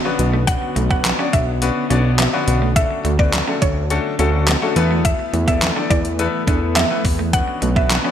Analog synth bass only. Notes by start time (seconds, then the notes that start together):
0.19 B1
0.76 B1
1.33 B1
1.90 B1
2.48 B1
3.05 D2
3.62 D2
4.19 D2
4.76 E2
5.33 E2
5.91 E2
6.47 E2
7.05 E2
7.62 B1